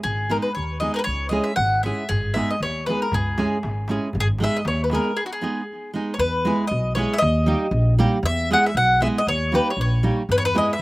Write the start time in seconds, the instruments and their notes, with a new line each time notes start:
0.03 upright bass G#1, mandolin G#4
0.30 nylon-string guitar G#3 B3 D#4 G#4, mandolin A#4
0.42 mandolin B4
0.55 upright bass D#2, mandolin C#5
0.80 nylon-string guitar G#3 B3 D#4 G#4, mandolin D#5
0.94 mandolin A#4 B4
0.99 mandolin B4
1.04 upright bass C#2, mandolin C#5
1.29 nylon-string guitar G#3 C#4 E4 G#4, mandolin D#5
1.44 mandolin E5
1.56 upright bass G#1, mandolin F#5
1.83 nylon-string guitar G#3 C#4 E4 G#4, mandolin E5
2.09 upright bass G#1, mandolin G#4, darbuka dum
2.26 darbuka tek
2.34 nylon-string guitar G#3 B3 D#4 G#4, mandolin E5, darbuka tek
2.50 mandolin D#5
2.60 upright bass D#2, mandolin C#5, darbuka tek
2.86 nylon-string guitar G#3 B3 D#4 G#4, mandolin B4, darbuka tek
3.02 mandolin A#4
3.12 upright bass C#2, mandolin G#4, darbuka dum
3.27 darbuka tek
3.38 nylon-string guitar G#3 C#4 E4 G#4, darbuka tek
3.63 upright bass G#1, darbuka tek
3.88 nylon-string guitar G#3 C#4 E4 G#4, darbuka tek
4.13 upright bass G#1, darbuka dum
4.20 mandolin G#4
4.28 darbuka tek
4.39 nylon-string guitar G#3 B3 D#4 G#4, darbuka tek
4.44 mandolin E5
4.57 mandolin D#5
4.65 upright bass D#2, mandolin C#5, darbuka tek
4.84 mandolin B4
4.90 nylon-string guitar G#3 B3 D#4 G#4, darbuka tek
4.95 mandolin A#4
5.17 mandolin G#4
5.26 mandolin F#4
5.33 mandolin G#4
5.41 nylon-string guitar G#3 B3 D#4 G#4
5.94 nylon-string guitar G#3 B3 D#4 G#4
6.14 mandolin C#5
6.18 upright bass E2, mandolin B4
6.45 nylon-string guitar G#3 B3 E4 G#4
6.67 upright bass B1, mandolin D#5
6.95 nylon-string guitar G#3 B3 E4 G#4, mandolin C#5
7.13 mandolin E5
7.18 upright bass D#2, mandolin D#5
7.46 nylon-string guitar G3 A#3 D#4 G4
7.71 upright bass A#1
7.98 nylon-string guitar G3 A#3 D#4 G4
8.23 upright bass E2, mandolin E5
8.51 nylon-string guitar G#3 B3 E4 G#4, mandolin F#5
8.66 mandolin E5
8.75 upright bass B1, mandolin F#5
9.00 nylon-string guitar G#3 B3 E4 G#4, mandolin E5
9.18 mandolin D#5
9.27 upright bass D#2, mandolin C#5
9.52 nylon-string guitar G3 A#3 D#4 G4, mandolin B4
9.70 mandolin C#5
9.77 upright bass A#1
9.81 mandolin C#5
10.03 nylon-string guitar G3 A#3 D#4 G4
10.29 upright bass E2, mandolin B4, darbuka dum
10.38 mandolin C#5
10.45 mandolin B4, darbuka tek
10.55 nylon-string guitar G#3 B3 E4 G#4, mandolin D#5, darbuka tek
10.70 mandolin E5, darbuka tek